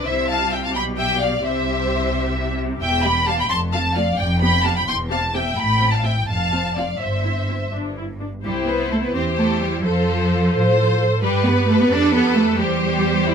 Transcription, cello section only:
0.06 0.72 C3 medium
0.75 1.44 B2 medium
1.45 2.79 C3 medium
2.82 3.38 E2 medium
3.49 4.07 F2 medium
4.18 4.76 F2 medium
4.88 5.45 E2 medium
5.57 6.15 A2 medium
6.27 6.87 F2 medium
6.99 7.60 G2 medium
7.72 8.32 G2 soft
8.44 8.52 G3 medium
8.68 8.91 B3 medium
8.91 9.03 A3 medium
9.04 9.15 B3 medium
9.15 9.23 C4 medium
9.38 9.61 A3 medium
9.61 9.84 G3 medium
9.85 11.00 F3 medium
11.23 11.44 G3 medium
11.46 11.69 B3 medium
11.68 11.80 A3 medium
11.81 11.92 B3 medium
11.92 12.14 D4 loud
12.15 12.37 B3 medium
12.37 12.60 A3 medium
12.60 13.34 G3 medium

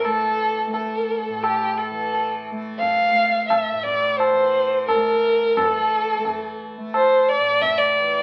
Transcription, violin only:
0.05 0.73 A4 medium
0.73 1.44 A4 medium
1.43 1.79 G4 medium
1.78 2.46 A4 medium
2.79 3.45 F5 loud
3.48 3.85 E5 medium
3.83 4.19 D5 medium
4.18 4.87 C5 medium
4.87 5.56 A#4 medium
5.56 5.67 A#4 medium
5.67 6.58 A4 medium
6.95 7.30 C5 medium
7.28 7.63 D5 loud
7.61 7.79 E5 loud
7.78 8.23 D5 medium

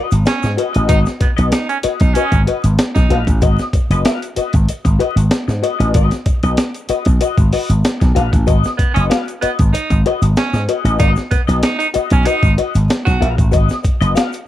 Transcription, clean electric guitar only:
0.00 0.15 F#4 medium
0.00 0.11 B4 medium
0.00 0.10 D#5 medium
0.12 muted clean electric guitar stroke soft
0.25 muted clean electric guitar stroke soft
0.43 muted clean electric guitar stroke soft
0.57 0.73 F#4 medium
0.57 0.72 B4 medium
0.57 0.72 D#5 medium
0.73 0.86 F#4 medium
0.73 0.87 B4 medium
0.73 0.88 D#5 medium
0.88 1.09 F#4 loud
0.88 1.05 B4 loud
0.88 1.04 D#5 loud
1.05 muted clean electric guitar stroke soft
1.20 muted clean electric guitar stroke soft
1.37 1.51 F#4 medium
1.37 1.52 B4 medium
1.37 1.52 D#5 medium
1.52 muted clean electric guitar stroke soft
1.84 2.00 F#4 medium
1.84 2.00 B4 medium
1.84 1.99 D#5 medium
2.00 muted clean electric guitar stroke medium
2.16 2.36 F#4 medium
2.16 2.32 B4 loud
2.16 2.32 D#5 medium
2.33 muted clean electric guitar stroke soft
2.47 2.63 F#4 medium
2.47 2.62 B4 medium
2.47 2.62 D#5 medium
2.63 muted clean electric guitar stroke soft
2.79 muted clean electric guitar stroke soft
2.96 muted clean electric guitar stroke soft
3.10 3.31 F#4 medium
3.10 3.27 B4 medium
3.10 3.27 F5 medium
3.28 muted clean electric guitar stroke medium
3.42 3.62 F#4 medium
3.42 3.63 B4 medium
3.42 3.63 D#5 loud
3.74 muted clean electric guitar stroke medium
3.91 4.04 F#4 medium
3.91 4.04 B4 medium
3.91 4.05 D#5 medium
4.05 4.26 F#4 medium
4.05 4.22 B4 loud
4.05 4.22 F5 loud
4.22 muted clean electric guitar stroke soft
4.36 4.53 F#4 medium
4.36 4.53 B4 medium
4.36 4.52 D#5 medium
4.53 muted clean electric guitar stroke soft
4.69 muted clean electric guitar stroke soft
4.85 muted clean electric guitar stroke soft
4.99 5.20 F#4 medium
4.99 5.16 B4 loud
4.99 5.15 D#5 loud
5.16 muted clean electric guitar stroke soft
5.30 muted clean electric guitar stroke soft
5.48 muted clean electric guitar stroke soft
5.63 5.79 F#4 medium
5.63 5.78 B4 medium
5.63 5.77 D#5 medium
5.79 5.93 F#4 soft
5.79 5.94 B4 medium
5.79 5.94 D#5 medium
5.95 6.15 F#4 loud
5.95 6.12 B4 loud
5.95 6.10 D#5 medium
6.12 muted clean electric guitar stroke medium
6.26 muted clean electric guitar stroke soft
6.43 6.57 F#4 medium
6.43 6.57 B4 medium
6.43 6.57 D#5 medium
6.58 muted clean electric guitar stroke soft
6.89 7.06 F#4 medium
6.89 7.06 B4 medium
6.89 7.05 D#5 medium
7.06 muted clean electric guitar stroke medium
7.21 7.41 F#4 medium
7.21 7.37 B4 medium
7.21 7.36 D#5 medium
7.37 muted clean electric guitar stroke medium
7.53 7.69 F#4 medium
7.53 7.69 B4 medium
7.53 7.69 D#5 medium
7.70 muted clean electric guitar stroke soft
7.84 muted clean electric guitar stroke soft
8.00 muted clean electric guitar stroke soft
8.15 8.36 F#4 medium
8.15 8.32 B4 loud
8.15 8.32 F5 medium
8.32 muted clean electric guitar stroke medium
8.47 8.67 F#4 loud
8.47 8.68 B4 loud
8.47 8.68 D#5 loud
8.77 muted clean electric guitar stroke soft
8.95 9.08 F#4 soft
8.95 9.09 B4 soft
8.95 9.10 D#5 medium
9.10 9.30 F#4 medium
9.10 9.26 B4 medium
9.10 9.27 F5 medium
9.27 muted clean electric guitar stroke soft
9.42 9.58 F#4 medium
9.42 9.58 B4 medium
9.42 9.57 D#5 medium
9.59 muted clean electric guitar stroke soft
9.74 muted clean electric guitar stroke soft
9.90 muted clean electric guitar stroke soft
10.06 10.26 F#4 medium
10.06 10.22 B4 loud
10.06 10.21 D#5 loud
10.22 muted clean electric guitar stroke medium
10.37 muted clean electric guitar stroke soft
10.54 muted clean electric guitar stroke soft
10.69 10.84 F#4 medium
10.69 10.84 B4 medium
10.69 10.84 D#5 medium
10.85 10.98 F#4 medium
10.85 10.99 B4 medium
10.85 10.99 D#5 medium
10.99 11.20 F#4 loud
10.99 11.16 B4 loud
10.99 11.15 D#5 loud
11.16 muted clean electric guitar stroke medium
11.32 muted clean electric guitar stroke soft
11.47 11.61 F#4 soft
11.47 11.62 B4 soft
11.47 11.62 D#5 medium
11.62 muted clean electric guitar stroke soft
11.94 12.11 F#4 medium
11.94 12.11 B4 medium
11.94 12.10 D#5 medium
12.12 muted clean electric guitar stroke medium
12.26 12.47 F#4 medium
12.26 12.43 B4 medium
12.26 12.42 D#5 medium
12.44 muted clean electric guitar stroke medium
12.58 12.74 F#4 medium
12.58 12.75 B4 medium
12.58 12.74 D#5 medium
12.75 muted clean electric guitar stroke soft
12.90 muted clean electric guitar stroke soft
13.06 muted clean electric guitar stroke soft
13.21 13.42 F#4 medium
13.21 13.37 B4 medium
13.21 13.37 F5 medium
13.37 muted clean electric guitar stroke soft
13.51 13.73 F#4 loud
13.51 13.73 B4 medium
13.51 13.74 D#5 loud
13.83 muted clean electric guitar stroke soft
14.01 14.14 F#4 medium
14.01 14.14 B4 medium
14.01 14.15 D#5 medium
14.15 14.36 F#4 medium
14.15 14.32 B4 medium
14.15 14.32 F5 loud
14.33 muted clean electric guitar stroke soft

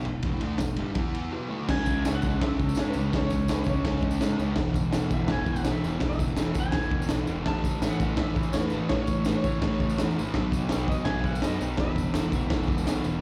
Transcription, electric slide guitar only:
1.70 2.03 G#5 loud
2.08 2.14 E5 loud
2.15 2.39 F#5 loud
2.43 2.79 E5 loud
2.79 2.87 C#5 medium
2.88 3.14 B4 medium
3.16 3.24 C#5 medium
3.27 3.52 C#5 medium
3.54 3.61 B4 medium
3.64 3.68 C#5 medium
3.69 4.37 C#5 medium
5.14 5.31 E5 loud
5.32 5.48 G#5 loud
5.52 5.69 F#5 medium
5.71 6.06 E5 medium
6.09 6.56 E5 medium
6.60 7.26 G#5 loud
7.47 7.80 A5 loud
7.82 7.90 E5 loud
7.90 8.17 F#5 loud
8.18 8.52 E5 loud
8.53 8.60 C#5 medium
8.60 8.90 B4 medium
8.89 8.99 C#5 loud
9.01 9.26 C#5 medium
9.27 9.35 B4 medium
9.36 9.41 C#5 medium
9.42 10.12 C#5 medium
10.89 11.07 D#5 medium
11.05 11.22 G#5 loud
11.26 11.42 F#5 loud
11.44 11.79 D#5 loud
11.80 12.34 E5 loud
12.35 13.02 E5 medium

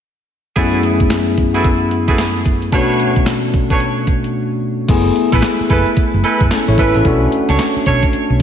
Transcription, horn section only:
0.56 0.82 E4 medium
0.56 0.82 F#4 medium
0.56 0.82 G#4 medium
0.56 0.82 A4 medium
0.56 0.82 B4 medium
1.54 1.66 E4 medium
1.54 1.66 F#4 medium
1.54 1.67 G#4 medium
1.54 1.67 A4 medium
1.54 1.67 B4 medium
2.08 2.20 E4 medium
2.08 2.21 F#4 medium
2.08 2.21 G#4 medium
2.08 2.21 A4 medium
2.08 2.21 B4 medium
2.72 2.98 D4 medium
2.72 2.98 A4 medium
2.72 2.98 B4 medium
2.72 2.98 C#5 medium
3.70 3.83 D4 medium
3.70 3.83 A4 medium
3.70 3.83 B4 medium
3.70 3.83 C#5 medium
5.32 5.45 E4 medium
5.32 5.45 G#4 medium
5.32 5.45 A4 medium
5.32 5.45 B4 medium
5.69 5.87 E4 medium
5.69 5.88 G#4 medium
5.69 5.88 A4 medium
5.69 5.88 B4 medium
6.23 6.42 E4 medium
6.23 6.42 G#4 medium
6.23 6.42 A4 medium
6.23 6.42 B4 medium
6.78 6.96 E4 medium
6.78 6.96 G#4 medium
6.78 6.96 A4 medium
6.78 6.96 B4 medium
7.48 7.61 D4 medium
7.48 7.61 A4 medium
7.48 7.61 C#5 medium
7.86 8.04 D4 medium
7.86 8.04 A4 medium
7.86 8.04 C#5 medium

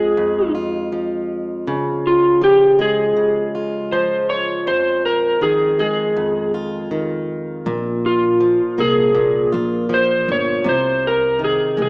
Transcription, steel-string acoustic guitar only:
0.00 0.16 F2 medium
0.00 0.92 F3 medium
0.00 2.78 G#3 soft
0.00 0.54 F4 medium
0.17 1.75 F2 medium
0.55 3.54 F4 medium
0.92 2.41 F3 medium
1.67 3.15 C#3 medium
2.41 3.92 F3 medium
2.79 5.79 G#3 medium
3.16 4.75 C#3 medium
3.55 5.44 F4 medium
3.93 5.41 F3 medium
4.67 6.15 F2 medium
5.41 6.90 D#3 medium
5.79 7.74 G#3 soft
6.17 7.66 F2 medium
6.54 9.52 F4 medium
6.91 7.74 D#3 medium
7.66 9.13 A#2 medium
8.40 9.88 F3 medium
8.78 10.74 A#3 medium
9.15 10.64 A#2 medium
9.52 10.73 F4 medium
9.89 10.73 F3 medium
10.64 11.89 C3 medium
11.39 11.89 D#3 medium
11.77 11.89 G#3 medium

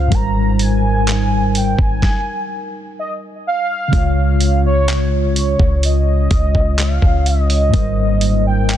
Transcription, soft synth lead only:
0.00 0.16 F5 loud
0.14 0.63 A#5 loud
0.62 1.59 G#5 loud
1.57 1.80 G5 medium
1.81 2.95 G#5 loud
2.99 3.13 D#5 medium
3.47 4.61 F5 loud
4.66 5.33 C#5 loud
5.37 5.81 C#5 medium
5.85 6.82 D#5 loud
6.80 7.29 F5 loud
7.27 8.46 D#5 loud
8.46 8.77 G5 loud

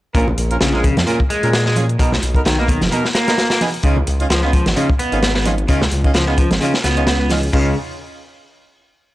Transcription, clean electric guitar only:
0.15 0.26 A#2 medium
0.61 0.72 C#3 medium
0.74 0.83 G#3 medium
0.84 0.95 C#3 medium
1.07 1.18 A#2 medium
1.30 1.65 G#3 medium
1.66 1.76 G#3 medium
1.99 2.10 B2 medium
2.46 2.57 D#3 medium
2.58 2.68 A#3 medium
2.69 2.80 D#3 medium
2.92 3.03 B2 medium
3.15 3.49 A#3 loud
3.51 3.60 A#3 medium
3.84 3.95 C#3 medium
4.30 4.41 F3 medium
4.43 4.53 B3 medium
4.53 4.64 F3 medium
4.76 4.87 C#3 medium
4.99 5.34 B3 loud
5.35 5.45 B3 medium
5.69 5.80 C#3 medium
6.15 6.26 F3 medium
6.28 6.37 B3 medium
6.38 6.49 F3 medium
6.61 6.72 C#3 medium
6.84 7.19 B3 loud
7.20 7.30 B3 medium
7.53 7.75 C#3 medium

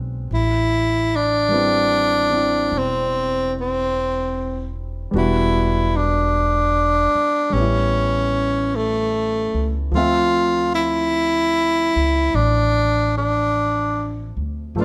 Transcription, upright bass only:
0.00 0.26 B1 soft
0.31 2.67 A1 medium
2.72 5.08 E1 medium
5.13 7.09 E1 medium
7.15 muted upright bass stroke soft
7.53 9.49 A1 medium
9.54 9.90 C#2 medium
9.92 11.89 D2 medium
11.96 12.32 C#2 soft
12.34 14.30 A1 medium
14.37 14.73 D2 medium
14.75 14.85 G1 medium

